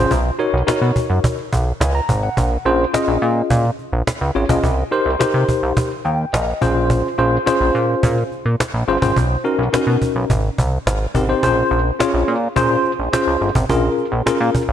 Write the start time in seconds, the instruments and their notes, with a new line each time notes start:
Already playing: tine electric piano C#4 F4 G#4 C5
0.11 analog synth bass B1, cajon bass
0.39 tine electric piano D#4 F#4 A#4 C#5, cajon slap
0.53 analog synth bass B1
0.67 analog synth bass B2, tine electric piano D#4 F#4 A#4 C#5, cajon slap
0.81 analog synth bass B2, cajon slap
0.96 cajon bass
1.10 analog synth bass F#2
1.24 cajon bass
1.38 cajon slap
1.52 analog synth bass B1, cajon bass
1.80 analog synth bass C#2, tine electric piano G#5, cajon slap
1.95 tine electric piano A#5
2.09 analog synth bass G#1, cajon bass
2.23 tine electric piano F#5
2.37 analog synth bass A#1, cajon bass
2.65 analog synth bass A#1, tine electric piano C#4 F4 G#4 C5, cajon slap
2.93 tine electric piano C#4 F4 G#4 D#5, cajon slap
3.08 analog synth bass A#1
3.22 analog synth bass A#2, cajon slap
3.50 analog synth bass A#2, cajon bass
3.65 cajon slap
3.79 cajon slap
3.93 analog synth bass A#1
4.07 cajon slap
4.21 analog synth bass C#2
4.35 analog synth bass G#1, tine electric piano C#4 F4 G#4 C#5, cajon slap
4.49 analog synth bass A#1, tine electric piano C#4 F4 G#4 D#5, cajon bass
4.63 analog synth bass C2, cajon bass
4.91 tine electric piano D#4 G4 A#4 C5, cajon slap
5.06 analog synth bass C2
5.19 analog synth bass C3, tine electric piano D#4 G4 A#4 C5, cajon slap
5.34 analog synth bass C3
5.49 cajon bass
5.63 analog synth bass C2
5.77 cajon bass
5.91 cajon slap
6.05 analog synth bass D#2, tine electric piano G5, cajon slap
6.33 analog synth bass A#1, tine electric piano D#5, cajon slap
6.61 analog synth bass A#1, tine electric piano C#4 F4 G#4 C5, cajon bass
6.90 cajon bass
7.18 analog synth bass A#1, tine electric piano C#4 F4 G#4 C5, cajon slap
7.46 tine electric piano C#4 F4 G#4 C5, cajon slap
7.61 analog synth bass A#1
7.75 analog synth bass A#2, cajon slap
8.03 analog synth bass A#2, cajon bass
8.17 cajon slap
8.32 cajon slap
8.46 analog synth bass A#2
8.60 cajon slap
8.74 analog synth bass A#1
8.88 analog synth bass G1, tine electric piano C#4 F4 G#4 C5, cajon slap
9.02 analog synth bass G#1, tine electric piano C#4 F4 G#4 C5, cajon bass
9.16 analog synth bass B1, cajon bass
9.44 tine electric piano C#4 D#4 F#4 A#4, cajon slap
9.59 analog synth bass B1
9.73 analog synth bass B2, tine electric piano C#4 D#4 F#4 A#4, cajon slap
9.87 analog synth bass B2, cajon slap
10.02 cajon bass
10.15 analog synth bass B1
10.30 analog synth bass G#1, cajon bass
10.44 cajon slap
10.58 analog synth bass C2, cajon bass
10.86 analog synth bass G#1, cajon slap
11.14 analog synth bass G#1, tine electric piano C4 D#4 G4 A#4, cajon bass
11.29 tine electric piano C4 D#4 G4 C5
11.43 analog synth bass A#1, tine electric piano C#4 F4 G#4 C5, cajon bass
11.71 analog synth bass A#1, cajon slap
11.99 tine electric piano C#4 F4 G#4 C#5, cajon slap
12.14 analog synth bass A#1
12.28 analog synth bass A#2, cajon slap
12.56 analog synth bass A#2, tine electric piano C#4 F4 G#4 C5, cajon bass
12.71 cajon slap
12.85 cajon slap
12.99 analog synth bass A#1
13.13 tine electric piano C#4 F4 G#4 C5, cajon slap
13.27 analog synth bass C#2
13.41 analog synth bass G1, cajon slap
13.55 analog synth bass G#1, cajon bass
13.69 analog synth bass A#1, tine electric piano C#4 F4 G#4 A#4, cajon bass
13.98 cajon slap
14.12 analog synth bass A#1
14.26 analog synth bass A#2, tine electric piano C#4 F4 G#4 A#4, cajon slap
14.40 analog synth bass A#2
14.55 cajon bass
14.69 analog synth bass A#1